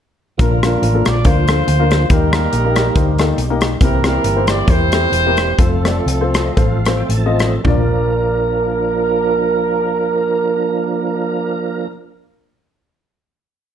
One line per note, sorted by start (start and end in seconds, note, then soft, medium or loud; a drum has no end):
0.38 0.75 A#1 medium
0.38 1.02 A#2 medium
0.38 2.06 D3 soft
0.38 2.06 F3 soft
0.38 2.06 A#3 soft
0.38 0.54 A#3 medium
0.38 0.62 D4 medium
0.38 0.54 D4 medium
0.38 2.06 F4 medium
0.38 0.61 F4 medium
0.38 0.54 F4 medium
0.38 0.61 A#4 medium
0.38 0.55 A#4 medium
0.38 kick loud
0.38 closed hi-hat medium
0.63 0.81 A#3 medium
0.63 1.44 D4 medium
0.63 0.81 D4 medium
0.63 1.24 F4 medium
0.63 0.81 F4 medium
0.63 1.03 A#4 medium
0.63 0.81 A#4 medium
0.63 cross-stick medium
0.63 closed hi-hat medium
0.82 1.02 A1 medium
0.82 closed hi-hat medium
0.94 1.14 A#3 medium
0.94 1.14 D4 medium
0.94 1.14 F4 medium
0.94 1.14 A4 medium
1.05 1.22 A#1 medium
1.05 1.24 D5 medium
1.05 cross-stick loud
1.05 closed hi-hat medium
1.24 1.61 D2 medium
1.24 1.40 A#3 medium
1.24 1.40 D4 medium
1.24 1.40 F4 medium
1.24 2.06 F4 medium
1.24 1.40 A#4 medium
1.24 2.10 C5 medium
1.24 kick loud
1.24 closed hi-hat medium
1.48 1.66 A#3 medium
1.48 1.66 D4 medium
1.48 1.66 F4 medium
1.48 1.66 A4 medium
1.48 cross-stick medium
1.48 closed hi-hat medium
1.68 2.04 D2 medium
1.68 closed hi-hat medium
1.79 2.00 A#3 medium
1.79 2.00 D4 medium
1.79 2.00 F4 medium
1.79 2.00 A#4 medium
1.91 cross-stick medium
1.91 closed hi-hat medium
2.09 2.46 D#2 medium
2.09 2.73 D#3 medium
2.09 3.77 G3 soft
2.09 3.77 A#3 soft
2.09 2.26 A#3 medium
2.09 3.77 D#4 medium
2.09 3.34 D#4 medium
2.09 2.26 D#4 medium
2.09 3.77 G4 medium
2.09 2.25 G4 medium
2.09 3.35 G4 medium
2.09 3.38 A#4 medium
2.09 2.26 A#4 medium
2.09 kick loud
2.09 closed hi-hat medium
2.33 2.52 A#3 medium
2.33 2.52 D#4 medium
2.33 2.52 G4 medium
2.33 2.52 A#4 medium
2.33 cross-stick loud
2.33 closed hi-hat medium
2.53 2.89 A#1 medium
2.53 closed hi-hat medium
2.64 2.85 A#3 medium
2.64 2.85 D#4 medium
2.64 2.85 G4 medium
2.64 2.85 A#4 medium
2.76 cross-stick loud
2.76 closed hi-hat medium
2.96 3.32 D2 medium
2.96 3.11 A#3 medium
2.96 3.11 D#4 medium
2.96 3.11 G4 medium
2.96 3.11 C5 medium
2.96 kick loud
2.96 closed hi-hat medium
3.18 3.37 A#3 medium
3.18 3.37 D#4 medium
3.18 3.37 G4 medium
3.18 3.37 A4 medium
3.18 cross-stick loud
3.18 closed hi-hat medium
3.38 3.74 B1 medium
3.38 closed hi-hat medium
3.50 3.71 A#3 medium
3.50 3.70 D#4 medium
3.50 3.71 G4 medium
3.50 3.71 A#4 medium
3.61 cross-stick medium
3.61 closed hi-hat medium
3.81 4.18 C2 medium
3.81 4.45 C3 medium
3.81 5.55 E3 medium
3.81 5.55 A#3 soft
3.81 5.55 C4 soft
3.81 3.97 C4 medium
3.81 3.97 E4 medium
3.81 4.05 E4 medium
3.81 5.55 G4 medium
3.81 4.05 G4 medium
3.81 3.97 G4 medium
3.81 4.03 A#4 medium
3.81 3.97 A#4 medium
3.81 kick loud
3.81 closed hi-hat loud
4.04 4.23 C4 medium
4.04 4.23 E4 medium
4.04 4.67 E4 medium
4.04 4.23 G4 medium
4.04 4.68 G4 medium
4.04 4.46 A#4 medium
4.04 4.23 A#4 medium
4.04 cross-stick medium
4.04 closed hi-hat medium
4.24 4.61 G1 medium
4.24 closed hi-hat medium
4.36 4.57 C4 medium
4.36 4.57 E4 medium
4.36 4.57 G4 medium
4.36 4.57 C5 medium
4.47 4.68 D5 medium
4.47 cross-stick loud
4.47 closed hi-hat medium
4.68 5.06 E2 medium
4.68 4.84 C4 medium
4.68 5.55 E4 medium
4.68 4.84 E4 medium
4.68 5.55 G4 medium
4.68 4.84 G4 medium
4.68 4.84 A#4 medium
4.68 5.59 C5 loud
4.68 kick loud
4.68 closed hi-hat medium
4.92 5.12 C4 medium
4.92 5.12 E4 medium
4.92 5.12 G4 medium
4.92 5.12 A4 medium
4.92 cross-stick loud
4.92 closed hi-hat medium
5.12 5.51 E1 medium
5.12 closed hi-hat medium
5.26 5.48 C4 medium
5.26 5.48 E4 medium
5.26 5.48 G4 medium
5.26 5.48 A#4 medium
5.37 cross-stick loud
5.37 closed hi-hat medium
5.58 5.99 F1 medium
5.58 7.61 F3 medium
5.58 7.61 A3 soft
5.58 7.05 C4 medium
5.58 5.75 C4 medium
5.58 7.61 C4 soft
5.58 7.05 F4 medium
5.58 5.75 F4 medium
5.58 7.09 A4 medium
5.58 5.75 A4 medium
5.58 7.62 A4 medium
5.58 5.75 C5 medium
5.58 kick loud
5.58 closed hi-hat medium
5.85 6.05 C4 medium
5.85 6.05 F4 medium
5.85 6.05 A4 medium
5.85 6.05 D5 medium
5.85 cross-stick medium
5.85 closed hi-hat medium
6.06 6.49 C2 medium
6.06 closed hi-hat medium
6.21 6.44 C4 medium
6.21 6.44 F4 medium
6.21 6.45 A4 medium
6.21 6.44 C5 medium
6.34 6.56 D#5 medium
6.34 cross-stick loud
6.34 closed hi-hat medium
6.57 7.02 A1 medium
6.57 6.75 C4 medium
6.57 6.75 F4 medium
6.57 6.75 A4 medium
6.57 6.75 C5 medium
6.57 6.95 F5 medium
6.57 kick loud
6.57 closed hi-hat medium
6.85 7.09 C4 medium
6.85 7.09 F4 medium
6.85 7.09 A4 medium
6.85 7.09 C5 medium
6.85 cross-stick loud
6.85 closed hi-hat medium
6.97 7.08 G5 medium
7.09 7.57 A1 medium
7.09 7.61 A5 medium
7.09 closed hi-hat medium
7.26 7.52 C4 medium
7.26 7.52 F4 medium
7.26 7.52 A4 medium
7.26 7.52 D#5 medium
7.39 cross-stick medium
7.39 closed hi-hat medium
7.64 11.87 A#1 medium
7.64 11.88 F3 medium
7.64 11.87 A#3 medium
7.64 11.86 D4 medium
7.64 11.87 D4 medium
7.64 11.87 F4 medium
7.64 11.86 A#4 medium
7.64 11.87 A#4 medium
7.64 11.88 A#4 medium
7.64 11.89 D5 medium
7.64 kick medium
7.64 floor tom medium